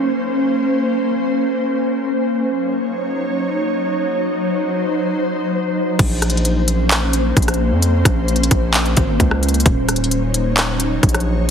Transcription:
Already playing: ambient pad A#3 C#4 C5
2.33 ambient pad F#3 D#4 C#5
4.16 ambient pad C5
5.99 808-style bass A#1, ambient pad A#3 C#4 C5, kick, closed hi-hat, crash
6.22 cross-stick, closed hi-hat
6.30 closed hi-hat
6.37 closed hi-hat
6.45 closed hi-hat
6.68 closed hi-hat
6.91 clap, closed hi-hat
7.13 closed hi-hat
7.37 808-style bass A#1, kick, closed hi-hat
7.42 closed hi-hat
7.48 cross-stick, closed hi-hat
7.54 closed hi-hat
7.71 808-style bass F2
7.82 closed hi-hat
8.05 808-style bass A#1, kick, cross-stick, closed hi-hat
8.28 closed hi-hat
8.36 closed hi-hat
8.43 closed hi-hat
8.51 808-style bass A#1, kick, closed hi-hat
8.74 clap, closed hi-hat
8.86 closed hi-hat
8.97 808-style bass G#1, kick, closed hi-hat
9.20 808-style bass C#2, kick, closed hi-hat
9.31 cross-stick
9.43 closed hi-hat
9.49 closed hi-hat
9.54 closed hi-hat
9.60 closed hi-hat
9.66 808-style bass D#1, ambient pad F#3 D#4 C#5, kick, closed hi-hat
9.89 cross-stick, closed hi-hat
9.96 closed hi-hat
10.04 closed hi-hat
10.11 closed hi-hat
10.34 closed hi-hat
10.57 clap, closed hi-hat
10.80 closed hi-hat
11.03 808-style bass A#1, kick, closed hi-hat
11.09 closed hi-hat
11.14 cross-stick, closed hi-hat
11.20 closed hi-hat

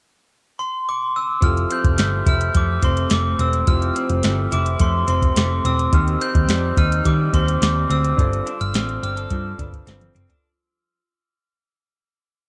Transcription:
0.59 glockenspiel C6
0.89 glockenspiel D6
1.16 glockenspiel E6
1.41 picked electric bass F1, clean electric guitar F3, synth keys C4 E4 G4, glockenspiel F6, kick, closed hi-hat
1.46 synth keys A4
1.57 closed hi-hat
1.70 clean electric guitar C4, glockenspiel G6, closed hi-hat
1.84 picked electric bass F1, kick, closed hi-hat
1.98 picked electric bass G1, clean electric guitar A3, snare, closed hi-hat
2.26 picked electric bass F1, clean electric guitar E4, glockenspiel F6, kick, closed hi-hat
2.41 closed hi-hat
2.55 picked electric bass F2, clean electric guitar A3, glockenspiel D6, kick, closed hi-hat
2.82 picked electric bass F1, clean electric guitar C4, glockenspiel C6, kick, closed hi-hat
2.97 closed hi-hat
3.10 picked electric bass F1, clean electric guitar A3, glockenspiel D6, snare, closed hi-hat
3.39 picked electric bass E1, clean electric guitar C4, glockenspiel E6, closed hi-hat
3.53 closed hi-hat
3.66 picked electric bass F1, clean electric guitar F3, synth keys C4 E4 G4, glockenspiel F6, kick, closed hi-hat
3.71 synth keys C5
3.82 closed hi-hat
3.95 clean electric guitar C4, closed hi-hat
4.09 picked electric bass F1, closed hi-hat
4.23 picked electric bass G1, clean electric guitar A3, snare, closed hi-hat
4.52 picked electric bass F1, clean electric guitar E4, glockenspiel D6, closed hi-hat
4.66 closed hi-hat
4.79 picked electric bass F2, clean electric guitar A3, glockenspiel C6, kick, closed hi-hat
5.07 picked electric bass F1, clean electric guitar C4, glockenspiel C6, closed hi-hat
5.22 kick, closed hi-hat
5.36 picked electric bass F1, clean electric guitar A3, glockenspiel D6, snare, closed hi-hat
5.65 picked electric bass E1, clean electric guitar C4, glockenspiel E6, closed hi-hat
5.79 closed hi-hat
5.91 picked electric bass D#2, clean electric guitar D#3, synth keys C4 D#4 G4, glockenspiel F6, kick, closed hi-hat
5.96 synth keys C5
6.08 closed hi-hat
6.21 clean electric guitar C4, glockenspiel G6, closed hi-hat
6.35 picked electric bass D#2, kick, closed hi-hat
6.48 picked electric bass F2, clean electric guitar G3, snare, closed hi-hat
6.77 picked electric bass D#2, clean electric guitar D#4, glockenspiel F6, kick, closed hi-hat
6.92 closed hi-hat
7.05 picked electric bass D#3, clean electric guitar G3, glockenspiel D6, kick, closed hi-hat
7.33 picked electric bass D#2, clean electric guitar C4, glockenspiel C6, kick, closed hi-hat
7.48 closed hi-hat
7.61 picked electric bass D#2, clean electric guitar G3, glockenspiel D6, snare, closed hi-hat
7.89 picked electric bass D2, clean electric guitar C4, glockenspiel E6, closed hi-hat
8.05 closed hi-hat
8.17 picked electric bass G1, clean electric guitar G2, synth keys D4 F4 A4, kick, closed hi-hat
8.22 synth keys C5
8.33 closed hi-hat
8.46 clean electric guitar D4, closed hi-hat
8.61 picked electric bass G1, glockenspiel F6, closed hi-hat
8.74 picked electric bass A1, clean electric guitar C4, snare, closed hi-hat
8.89 closed hi-hat
9.03 picked electric bass G1, clean electric guitar G4, glockenspiel F6, closed hi-hat
9.16 clean electric guitar A4, closed hi-hat
9.30 picked electric bass G2, clean electric guitar F3, kick, closed hi-hat
9.58 picked electric bass G1, synth keys D4 F4 A4 B4, clean electric guitar D4, kick, closed hi-hat
9.73 kick, closed hi-hat
9.87 picked electric bass G1, clean electric guitar C4, snare, closed hi-hat
10.01 closed hi-hat, high tom
10.15 picked electric bass F#1, clean electric guitar C4, closed hi-hat, mid tom
10.29 clean electric guitar D4, closed hi-hat, floor tom

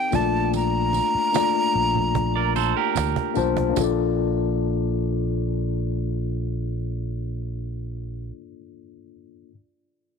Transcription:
Already playing: tine electric piano C4 D#4 G4 A#4 F5, flute G5
0.11 fingered electric bass A#1, tine electric piano A3 A#3 D4 F4 D5, cajon bass, tambourine, high conga
0.15 flute A5
0.53 flute A#5, cajon slap, tambourine, muted conga
0.93 cajon slap, tambourine, muted conga
1.15 muted fingered electric bass stroke
1.33 tine electric piano A3 A#3 D4 F4 D5, cajon slap, tambourine, high conga
1.75 fingered electric bass A#1, cajon slap
1.95 cajon slap, low conga
2.15 cajon bass
2.36 clean electric guitar A#4 D5
2.55 clean electric guitar A4 C5, cajon slap, tambourine, muted conga
2.77 clean electric guitar G4 A#4
2.95 fingered electric bass D2, cajon slap, tambourine, high conga
3.16 cajon bass
3.34 fingered electric bass B1, tine electric piano A#3 D4 F4 C5 A5, cajon slap, tambourine, high conga
3.57 cajon bass
3.69 tine electric piano A#3 D4
3.76 fingered electric bass A#1, tine electric piano F4 A4, cajon bass, tambourine, muted conga
3.84 tine electric piano D5

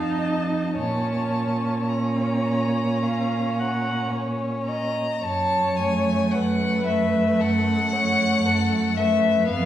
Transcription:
Already playing: cello F2, viola D#4, violin F5 A5
0.22 violin D#5
0.76 cello A#2, viola C#4, violin C#5 A5
1.89 viola C#4, violin C#5 A#5
3.03 violin F5
3.60 violin F#5
4.13 violin C#5
4.66 violin D#5 A#5
5.22 cello F#2, violin C#5 A5
5.77 viola A3, violin G#5
6.32 cello F#2, violin B4 F#5
6.87 viola A3, violin E5
7.40 cello F#2, violin A4 F#5
7.93 viola A3, violin C#5
8.45 cello F#2, violin A4
8.97 viola A3, violin B4 E5
9.49 cello F2, viola B3, violin F5

